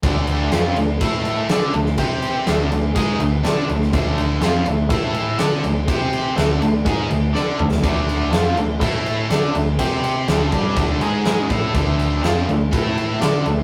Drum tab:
CC |x-x-x-x-x-x-x-x-|x-x-x-x-x-x-x-x-|x-x-x-x-x-x-x-x-|x-x-x-x-x-x-----|
SD |----o-------o--o|----o-------o--o|----o-------o---|----o-------o--o|
T2 |----------------|----------------|----------------|--------------o-|
BD |o-------o-------|o-------o-------|o-------o-------|o-------o-------|

CC |x-x-x-x-x-x-x-x-|x-x-x-x-x-x-x-x-|x-x-x-x-x-x-x-x-|
SD |----o-------o---|----o-------o---|----o-------o---|
T2 |----------------|----------------|----------------|
BD |o-------o-------|o-----o-o-----o-|o-------o-------|